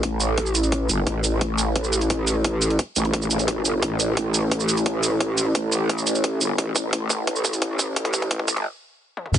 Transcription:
0.03 0.88 A1 medium
0.03 kick loud
0.03 closed hi-hat loud
0.20 closed hi-hat medium
0.20 shaker medium
0.38 kick medium
0.38 closed hi-hat medium
0.46 shaker soft
0.55 closed hi-hat medium
0.55 shaker medium
0.64 closed hi-hat soft
0.64 shaker soft
0.72 kick loud
0.72 closed hi-hat medium
0.89 1.05 G1 medium
0.89 closed hi-hat medium
0.89 shaker medium
1.07 1.40 A1 loud
1.07 kick loud
1.07 closed hi-hat medium
1.24 closed hi-hat medium
1.24 shaker medium
1.41 2.78 A1 loud
1.41 kick loud
1.41 closed hi-hat medium
1.58 closed hi-hat medium
1.58 shaker medium
1.76 kick medium
1.76 closed hi-hat medium
1.84 shaker soft
1.93 closed hi-hat medium
1.93 shaker medium
2.01 closed hi-hat soft
2.01 shaker soft
2.10 kick loud
2.10 closed hi-hat medium
2.27 closed hi-hat medium
2.27 shaker medium
2.44 kick loud
2.44 closed hi-hat medium
2.62 closed hi-hat medium
2.62 shaker medium
2.70 closed hi-hat soft
2.79 kick loud
2.79 closed hi-hat medium
2.96 3.56 A1 loud
2.96 closed hi-hat medium
2.96 shaker medium
3.05 closed hi-hat soft
3.13 kick medium
3.13 closed hi-hat medium
3.22 shaker soft
3.31 closed hi-hat medium
3.31 shaker medium
3.39 closed hi-hat soft
3.39 shaker soft
3.48 kick medium
3.48 closed hi-hat medium
3.56 3.81 G#1 loud
3.65 closed hi-hat medium
3.65 shaker medium
3.82 4.16 A1 loud
3.82 kick loud
3.82 closed hi-hat medium
4.00 closed hi-hat medium
4.00 shaker medium
4.17 5.54 A1 medium
4.17 kick loud
4.17 closed hi-hat medium
4.34 closed hi-hat medium
4.34 shaker medium
4.51 kick loud
4.51 closed hi-hat medium
4.60 shaker soft
4.69 closed hi-hat medium
4.69 shaker medium
4.77 closed hi-hat soft
4.77 shaker soft
4.86 kick loud
4.86 closed hi-hat medium
5.03 closed hi-hat medium
5.03 shaker medium
5.20 kick loud
5.20 closed hi-hat medium
5.38 closed hi-hat medium
5.38 shaker medium
5.55 6.40 A1 loud
5.55 kick loud
5.55 closed hi-hat loud
5.72 closed hi-hat medium
5.72 shaker medium
5.89 kick loud
5.89 closed hi-hat medium
5.98 shaker soft
6.07 closed hi-hat medium
6.07 shaker medium
6.15 closed hi-hat soft
6.15 shaker soft
6.24 kick loud
6.24 closed hi-hat loud
6.41 6.57 G1 loud
6.41 closed hi-hat medium
6.41 shaker medium
6.58 6.91 A1 loud
6.58 kick loud
6.58 closed hi-hat loud
6.76 kick loud
6.76 closed hi-hat medium
6.76 shaker medium
6.93 8.29 A1 loud
6.93 kick loud
6.93 closed hi-hat loud
7.10 kick loud
7.10 closed hi-hat medium
7.10 shaker medium
7.27 kick loud
7.27 closed hi-hat medium
7.36 shaker soft
7.45 kick loud
7.45 closed hi-hat medium
7.45 shaker medium
7.53 closed hi-hat soft
7.53 shaker soft
7.62 kick loud
7.62 closed hi-hat loud
7.79 kick loud
7.79 closed hi-hat medium
7.79 shaker medium
7.96 kick loud
7.96 closed hi-hat loud
8.05 kick medium
8.05 closed hi-hat soft
8.14 kick loud
8.14 closed hi-hat medium
8.14 shaker medium
8.22 kick medium
8.22 closed hi-hat soft
8.31 8.65 A1 medium
8.31 kick loud
8.31 closed hi-hat loud
8.39 kick medium
8.48 kick loud
8.48 closed hi-hat medium
8.48 shaker medium
8.57 kick medium
8.57 closed hi-hat soft
9.17 high tom medium
9.26 mid tom medium
9.34 9.39 A1 loud
9.34 kick loud
9.34 closed hi-hat loud
9.34 crash loud
9.34 shaker medium

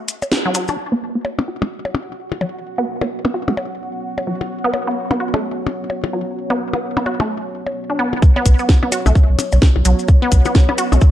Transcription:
0.08 closed hi-hat medium
0.08 maracas medium
0.22 percussion blips medium
0.22 maracas soft
0.32 snare loud
0.32 maracas soft
0.46 0.49 F#3 medium
0.54 0.60 F#3 medium
0.54 closed hi-hat medium
0.54 maracas medium
0.68 0.71 D4 medium
0.68 percussion blips soft
0.68 maracas soft
0.78 11.11 B3 medium
0.78 8.23 F#4 medium
0.92 0.95 B3 loud
1.00 1.10 B1 loud
1.00 11.11 C#5 medium
1.15 1.20 B3 medium
1.25 11.11 F#4 medium
1.25 percussion blips medium
1.39 1.41 B3 medium
1.39 percussion blips medium
1.48 1.51 F#4 medium
1.62 1.68 B1 loud
1.62 1.65 A3 medium
1.62 percussion blips medium
1.85 1.91 B1 medium
1.85 percussion blips medium
1.95 percussion blips soft
1.95 percussion blips medium
2.08 2.14 B1 loud
2.32 2.38 B1 medium
2.32 percussion blips medium
2.41 2.50 B1 medium
2.41 2.44 F#3 medium
2.41 percussion blips medium
2.78 2.82 B3 loud
2.87 2.96 B1 medium
3.01 3.06 B3 medium
3.01 percussion blips medium
3.25 3.27 B3 medium
3.25 percussion blips medium
3.34 3.37 F#4 medium
3.48 3.54 B1 loud
3.48 3.51 A3 medium
3.48 percussion blips medium
3.57 percussion blips medium
3.71 3.77 F#1 medium
3.81 3.89 B1 medium
3.94 4.00 B1 medium
4.18 4.24 A1 medium
4.18 percussion blips medium
4.27 4.36 B1 medium
4.27 4.30 F#3 medium
4.41 4.47 B1 medium
4.41 percussion blips medium
4.64 4.68 B3 loud
4.74 4.83 B1 loud
4.74 percussion blips medium
4.88 4.93 B3 medium
5.11 5.13 B3 medium
5.11 percussion blips medium
5.20 5.23 F#4 medium
5.34 5.40 B1 loud
5.34 5.37 A3 medium
5.34 percussion blips medium
5.57 5.63 B1 medium
5.67 percussion blips soft
5.67 percussion blips medium
5.81 5.87 B1 loud
5.90 percussion blips medium
6.04 6.10 B1 medium
6.04 percussion blips medium
6.13 6.22 B1 medium
6.13 6.16 F#3 medium
6.50 6.54 B3 loud
6.50 percussion blips medium
6.60 6.69 B1 medium
6.73 6.79 B3 medium
6.73 percussion blips medium
6.97 6.99 B3 medium
6.97 percussion blips medium
7.06 7.09 F#4 medium
7.06 percussion blips medium
7.20 7.26 B1 loud
7.20 7.23 A3 medium
7.20 percussion blips medium
7.43 7.49 F#1 medium
7.53 7.62 B1 medium
7.66 7.72 B1 medium
7.66 percussion blips medium
7.90 7.95 D4 medium
7.99 8.08 B1 medium
7.99 8.07 B3 loud
8.13 8.19 B1 medium
8.13 percussion blips medium
8.22 kick loud
8.22 maracas soft
8.36 8.40 B3 loud
8.36 percussion blips medium
8.46 8.55 B1 loud
8.46 kick medium
8.46 closed hi-hat medium
8.46 maracas loud
8.59 8.65 B3 medium
8.59 maracas soft
8.69 kick loud
8.69 snare loud
8.69 maracas soft
8.83 8.85 B3 medium
8.83 percussion blips medium
8.92 8.95 F#4 medium
8.92 closed hi-hat loud
8.92 percussion blips medium
8.92 maracas loud
9.06 9.12 B1 loud
9.06 9.09 A3 medium
9.06 percussion blips medium
9.06 maracas medium
9.15 kick loud
9.15 maracas soft
9.29 9.35 B1 medium
9.39 closed hi-hat medium
9.39 percussion blips medium
9.39 percussion blips loud
9.39 maracas medium
9.52 9.59 B1 loud
9.52 percussion blips medium
9.52 maracas medium
9.62 kick loud
9.62 snare loud
9.62 maracas soft
9.76 9.82 B1 medium
9.76 percussion blips medium
9.85 9.94 B1 medium
9.85 9.88 F#3 medium
9.85 closed hi-hat medium
9.85 maracas loud
9.99 maracas soft
10.08 kick loud
10.08 percussion blips medium
10.08 maracas soft
10.22 10.26 B3 loud
10.32 10.41 B1 loud
10.32 kick medium
10.32 closed hi-hat loud
10.32 maracas loud
10.45 10.51 B3 medium
10.45 percussion blips medium
10.45 maracas medium
10.55 kick loud
10.55 snare loud
10.55 maracas soft
10.69 10.71 B3 medium
10.69 percussion blips medium
10.69 percussion blips loud
10.78 10.81 F#4 medium
10.78 closed hi-hat loud
10.78 maracas medium
10.92 10.98 B1 loud
10.92 10.95 A3 medium
10.92 percussion blips medium
10.92 maracas medium
11.01 kick loud
11.01 maracas soft

